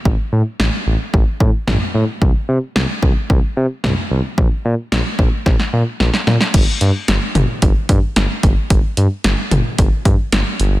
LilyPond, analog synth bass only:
\new Staff \with { instrumentName = "Analog synth bass" } { \clef bass \time 4/4 \key g \minor \tempo 4 = 111 a,,16 r16 a,16 r16 a,,16 r16 a,,16 r16 a,,16 r16 a,16 r16 a,,16 r16 a,16 r16 | c,16 r16 c16 r16 c,16 r16 c,16 r16 c,16 r16 c16 r16 c,16 r16 c,16 r16 | bes,,16 r16 bes,16 r16 bes,,16 r16 bes,,16 r16 bes,,16 r16 bes,16 r16 bes,,16 r16 bes,16 r16 | g,,16 r16 g,16 r16 g,,16 r16 g,,16 r16 g,,16 r16 g,16 r16 g,,16 r16 g,,16 r16 |
g,,16 r16 g,16 r16 g,,16 r16 g,,16 r16 g,,16 r16 g,16 r16 g,,16 r16 g,,8 | }